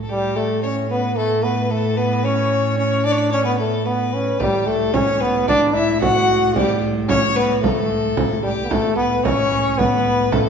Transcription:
Already playing: A2
0.03 A4
0.09 A2 G3 G4
0.36 A3 A4
0.63 C#4 C#5
0.90 B3 B4
1.17 A3 A4
1.44 B3 B4
1.71 A3 A4
1.97 B3 B4
2.24 C#4 C#5
2.78 C#4 C#5
3.05 D4 D5
3.12 C#5
3.18 D5
3.31 C#4 C#5
3.44 B3 B4
3.58 A3 A4
3.85 B3 B4
4.14 C#4
4.39 A2 G3 G4, frame drum
4.67 A3 A4, frame drum
4.94 C#4 C#5, frame drum
5.20 B3 B4
5.47 D4 D5, frame drum
5.75 E4 E5, frame drum
6.01 F#4 F#5, frame drum
6.56 G3 G4, frame drum
6.83 frame drum
7.08 C#4 C#5, frame drum
7.35 B3 B4
7.61 A3 A4, frame drum
8.17 frame drum
8.43 G3 G4
8.64 B3
8.69 A2 A3 A4, frame drum
8.96 B3 B4
9.24 C#4 C#5, frame drum
9.78 B3 B4, frame drum
10.32 A3 A4, frame drum

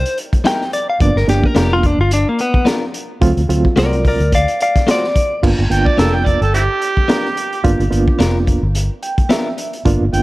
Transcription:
Already playing: C5
0.06 closed hi-hat
0.18 closed hi-hat
0.33 kick, closed hi-hat
0.44 G3 D#4 E4 A#4 G5, snare, closed hi-hat
0.61 snare
0.73 D5, closed hi-hat
0.90 F5
1.00 G1 F3 A#3 B3 D4 D5, kick, closed hi-hat
1.16 G1 A#4, snare
1.28 G1 F3 A#3 B3 D4 G4, snare, closed hi-hat
1.44 A#4, kick
1.55 F1 B3 D4 F4 G4 A#4, snare, closed hi-hat
1.73 F4
1.83 D4, kick, closed hi-hat
1.98 G1 F4
2.11 D4, closed hi-hat
2.29 A#3
2.39 B3, closed hi-hat
2.54 kick
2.65 B3 D4 F4 A#4, snare, closed hi-hat
2.94 closed hi-hat
3.21 D2 F#3 A3 C4 F4, kick, closed hi-hat
3.37 D2, closed hi-hat
3.49 D2 F#3 A3 C4 F4, closed hi-hat
3.65 kick
3.76 C2 A3 F4 F#4 A#4 C5 D5, snare, closed hi-hat
3.93 closed hi-hat
4.05 A#4 D5, kick, open hi-hat
4.20 D2, closed hi-hat
4.32 D5 F5, kick, closed hi-hat
4.48 closed hi-hat
4.60 D5 F5, closed hi-hat
4.76 kick, snare, closed hi-hat
4.87 A3 F4 F#4 C5, snare, closed hi-hat
4.91 D5
5.04 snare
5.16 kick, closed hi-hat
5.43 G1 A#3 B3 D4 F4, kick, crash
5.59 G1
5.70 G1 A#3 B3 D4 F4 G5, closed hi-hat
5.86 D5, kick
5.98 F1 B3 D4 F4 A4 A#4, snare, closed hi-hat
6.14 G5
6.26 D5, kick, closed hi-hat
6.41 G1 A4, closed hi-hat
6.54 C4 E4 G4, closed hi-hat
6.82 closed hi-hat
6.97 kick
7.08 B3 D4 F4 A#4, snare, closed hi-hat
7.25 snare
7.37 closed hi-hat
7.53 closed hi-hat
7.64 G1 A#3 B3 D4 F4, kick, closed hi-hat
7.80 G1, closed hi-hat
7.90 G1 A#3 B3 D4 F4, closed hi-hat
8.08 kick
8.19 F1 B3 D4 F4 A#4, snare, closed hi-hat
8.47 kick, closed hi-hat
8.63 G1
8.75 closed hi-hat
9.03 G5, closed hi-hat
9.18 kick, closed hi-hat
9.29 B3 D4 F4 A#4 E5, snare, closed hi-hat
9.58 closed hi-hat
9.73 closed hi-hat
9.85 G1 A#3 B3 D4 F4, kick, closed hi-hat
10.01 G1
10.13 G1 A#3 B3 D4 F4 G5, closed hi-hat

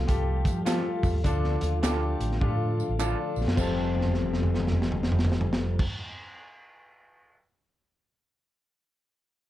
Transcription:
Already playing: F3 G3 A3
0.08 C2 F4 G4 A4, kick, closed hi-hat, tambourine
0.45 F3, kick, closed hi-hat, tambourine
0.65 C4 F4 G4 A4, snare, clap, closed hi-hat, tambourine
1.03 F2, kick, open hi-hat, tambourine
1.14 D#2
1.24 D2 D3 D4 F4 A4, kick, closed hi-hat, tambourine
1.44 snare
1.61 D#2 F4, closed hi-hat, tambourine
1.82 D2 D4 E4 F4 G4 A4 D5, snare, clap, closed hi-hat, tambourine
1.90 F4
2.20 A1, closed hi-hat, tambourine
2.32 snare
2.41 A2 D4 F4 G4, kick
2.48 A4
2.80 tambourine
2.89 A1
2.99 D4 E4 F4 A4 D5, clap, tambourine
3.06 F4
3.36 A#1, tambourine
3.47 F#2, snare
3.55 F1 F2 F3 G3 A3 C4 F4 G4, kick, crash, tambourine
3.59 G4 A4
3.95 floor tom
4.01 snare
4.06 floor tom
4.14 snare
4.22 floor tom
4.34 snare
4.43 floor tom
4.54 snare
4.60 floor tom
4.67 snare
4.72 floor tom
4.82 snare
4.92 floor tom
5.03 snare
5.12 floor tom
5.19 snare
5.25 floor tom
5.32 snare
5.41 floor tom
5.53 snare
5.79 kick, crash

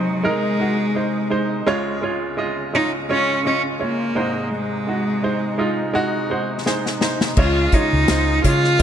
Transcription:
Already playing: G#1 G#2 C3 F#3 G#3 D#4 C5
0.23 G#3 D#4 A#4
0.60 G#3 D#4 F#4
0.95 G#3 D#4 C5
1.30 G#3 D#4 C5
1.66 C#2 C#3 G#3 F4 C#5
2.02 G#3 F4 C#5
2.37 G#3 F4 D#5
2.73 G#3 D#4 F4 C#5
3.09 G#3 C#4 F4 C#5
3.45 G#3 C#4 F4 D#5
3.79 G#3 A#3 F4 C#5
4.15 G#1 G#2 C3 G#3 D#4 C5
4.55 G#3
4.87 G#3 D#4 F#4
5.23 G#3 D#4 C5
5.58 G#3 D#4 F4
5.94 G#3 D#4 F#4
6.30 G#3 D#4 C5 F#5
6.66 G#3 D#4 C5 G#5, snare
6.86 snare
7.01 G#3 D#4 C5 A#5, snare
7.21 snare
7.36 C#2 C#3 G#3 F4 C#5, kick, crash
7.72 G#3 D#4 F4 C#5, kick, closed hi-hat
7.93 C#2
8.08 C#2 G#3 F4 C5, snare, closed hi-hat
8.44 C#3 G#3 F4 C#5, kick, closed hi-hat
8.64 snare
8.79 G#3

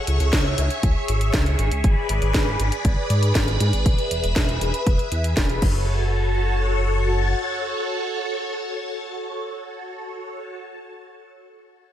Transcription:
Already playing: G#4 C#5 E5 C#6
0.07 C#2, closed hi-hat
0.20 C#2, closed hi-hat
0.33 C#2, kick, snare, closed hi-hat
0.58 C#2, closed hi-hat
0.70 closed hi-hat
0.83 C#2, kick, closed hi-hat
1.08 G#1, closed hi-hat
1.21 closed hi-hat
1.34 C#2, kick, snare, closed hi-hat
1.46 closed hi-hat
1.59 G#1, closed hi-hat
1.72 C#2, closed hi-hat
1.84 G#1 B4 D5 B5, kick, closed hi-hat
2.09 G#1, closed hi-hat
2.22 G#1, closed hi-hat
2.34 G#1, kick, snare, closed hi-hat
2.60 G#1, closed hi-hat
2.72 closed hi-hat
2.85 G#1, kick, closed hi-hat
3.10 G#2, closed hi-hat
3.23 closed hi-hat
3.35 G#1, kick, snare, closed hi-hat
3.48 closed hi-hat
3.60 G#2, closed hi-hat
3.73 G#1, closed hi-hat
3.86 E1 E5, kick, closed hi-hat
3.99 closed hi-hat
4.11 E1, closed hi-hat
4.24 E1, closed hi-hat
4.36 E1, kick, snare, closed hi-hat
4.49 closed hi-hat
4.61 E1, closed hi-hat
4.74 closed hi-hat
4.87 E1, kick, closed hi-hat
4.99 closed hi-hat
5.12 E2, closed hi-hat
5.24 closed hi-hat
5.37 E1, kick, snare, closed hi-hat
5.50 closed hi-hat
5.62 F#1 F#4 A4 C#5 A5, kick, crash

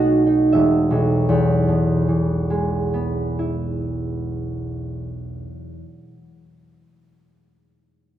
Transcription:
Already playing: B1 A3 D#4 F#4 B4 D#5 F#5 A5 B5
0.26 D#4
0.52 E1 E5
0.91 B1
1.29 E2
1.68 B2
2.08 E3
2.50 G#3
2.94 B3
3.39 E4

